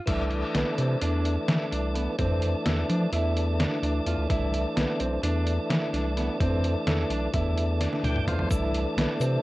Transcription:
0.06 C2 E3 A3 D4 E4, kick, closed hi-hat, crash
0.31 closed hi-hat
0.55 B1 B3, snare, closed hi-hat
0.78 C3 C4, closed hi-hat
1.00 E2 E3 A3 D4, closed hi-hat
1.25 closed hi-hat
1.48 E3 E4, snare, closed hi-hat
1.71 C2 D4, closed hi-hat
1.95 B3, closed hi-hat
2.18 F2 E3 A3 C4 D4, kick, closed hi-hat
2.42 closed hi-hat
2.66 E2 A4, snare, closed hi-hat
2.89 F3 D4, closed hi-hat
3.12 E2 E3 A3 D4 E4, closed hi-hat
3.37 closed hi-hat
3.59 D4, snare, closed hi-hat
3.82 D2 D4, closed hi-hat
4.06 E2 F4, closed hi-hat
4.18 D2
4.28 C2 E3 A3 D4 E4, kick, closed hi-hat
4.54 closed hi-hat
4.76 B1 B3, snare, closed hi-hat
5.00 B1 C4, closed hi-hat
5.22 E2 E3 A3 D4, closed hi-hat
5.47 closed hi-hat
5.70 E3 E4, snare, closed hi-hat
5.93 C2 D4, snare, closed hi-hat
6.17 B3, snare, closed hi-hat
6.38 F2 E3 A3 C4 D4, kick, closed hi-hat
6.64 closed hi-hat
6.87 E2 A4, snare, closed hi-hat
7.10 B1 D4, closed hi-hat
7.33 E2 E3 A3 D4 E4, kick, closed hi-hat
7.57 closed hi-hat
7.81 D4, snare, closed hi-hat
7.93 snare
8.03 D2 D4 G5, closed hi-hat, high tom
8.16 mid tom
8.27 E2 F4 C5, closed hi-hat, mid tom
8.38 E2, floor tom
8.49 C2 E3 A3 D4 E4, kick, closed hi-hat, shaker
8.75 closed hi-hat
8.97 B1 B3, snare, closed hi-hat
9.20 C3 C4, closed hi-hat, shaker

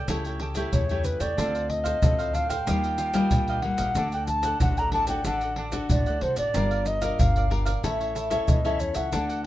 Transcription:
0.08 C#2 C#3 A3 E4 G4 A4 C#5 G5, pandeiro, maracas, surdo
0.25 A4 C#5 G5, pandeiro, maracas
0.39 G4 A4 C#5 G5, pandeiro
0.55 A3 E4 G4 A4 C#5 G5, pandeiro, maracas, surdo
0.73 E2 C#3 C#5, pandeiro, maracas, surdo
0.89 A3 E4 G4 A4 C#5 G5, pandeiro, maracas
1.04 B4, muted cavaquinho stroke, pandeiro, maracas
1.20 E2 A4 C#5 D5 G5, pandeiro, maracas, surdo
1.37 D2 D3 C4 D4 F4 A4 C5 F5, pandeiro, maracas, surdo
1.54 A4 C5 F5, pandeiro, maracas
1.69 D#5, muted cavaquinho stroke, pandeiro, surdo
1.84 A4 C5 F5, pandeiro, maracas, surdo
2.02 D2 A2 C4 F4 A4, pandeiro, maracas, surdo
2.18 A4 C5 F5, pandeiro, maracas
2.33 D4 A4 C5 F5, pandeiro, maracas
2.49 A4 C5 F5 G5, pandeiro, maracas, surdo
2.66 D#2 D#3 G3 A#3 F4 G4 D#5 F5, pandeiro, maracas, surdo
2.84 G4 D#5 F5, pandeiro, maracas
2.98 F4 G4 D#5 F5, pandeiro, maracas
3.14 G3 A#3 F4 G4 D#5 F5, pandeiro, maracas, surdo
3.31 A#1 A#2, pandeiro, maracas, surdo
3.48 G4 D#5 F5, pandeiro, maracas
3.62 G3 A#3 F4 F#5, muted cavaquinho stroke, pandeiro
3.78 A#1 G4 D#5 F5, pandeiro, maracas, surdo
3.95 D2 D3 D4 F#4 A4 D5 F#5, pandeiro, maracas, surdo
4.12 A4 D5 F#5 G5, pandeiro, maracas
4.27 A5, muted cavaquinho stroke, pandeiro, maracas, surdo
4.43 A4 D5 F#5, pandeiro, maracas, surdo
4.60 A1 A2 D4 F#4 A4 F#5, pandeiro, maracas, surdo
4.77 A4 D5 F#5 A#5, pandeiro, maracas
4.92 D4 F#4 A4 D5 F#5 A5, pandeiro
5.07 D4 F#4 A4 D5 F#5 G5, pandeiro, maracas, surdo
5.25 A1 D3 D4 F#4 A4 D5 F#5, pandeiro, maracas, surdo
5.41 A4 D5 F#5, pandeiro, maracas
5.56 D4 A4 D5 F#5, pandeiro
5.72 D4 F#4 A4 D5 F#5, pandeiro, maracas, surdo
5.90 A1 A2 D5, pandeiro, maracas, surdo
6.06 D2 A4 D5 F#5, pandeiro, maracas
6.21 C2 D4 F#4 A4 C5, muted cavaquinho stroke, pandeiro
6.36 A1 A4 D5 F#5, pandeiro, maracas, surdo
6.54 G1 G3 D4 F4 G4 A#4 D5 F5, pandeiro, maracas, surdo
6.71 A#4 D5 F5, pandeiro, maracas
6.86 D#5, muted cavaquinho stroke, pandeiro, maracas
7.01 D4 F4 A#4 D5 F5, pandeiro, maracas, surdo
7.19 G1 D3 F5, pandeiro, maracas, surdo
7.36 A#4 D5 F5, pandeiro, maracas
7.50 D4 F4 G4 A#4 D5 F5, pandeiro
7.65 A#4 D5 F5, pandeiro, maracas, surdo
7.83 A1 A3 C#4 E4 A4 C#5 E5, pandeiro, maracas, surdo
8.00 A4 C#5 E5, pandeiro, maracas
8.15 E4 A4 C#5 E5, pandeiro, maracas
8.30 C#4 E4 A4 C#5 E5, pandeiro, maracas, surdo
8.48 E2 E3 D#5, pandeiro, maracas, surdo
8.65 C#4 E4 A4 C#5 E5, pandeiro, maracas
8.79 C#5, muted cavaquinho stroke, pandeiro, maracas
8.95 C#2 A4 C#5 E5 F#5, pandeiro, maracas, surdo
9.12 D2 D3 D4 F#4 A4 D5 F#5, pandeiro, maracas, surdo
9.29 A4 D5 F#5, pandeiro, maracas

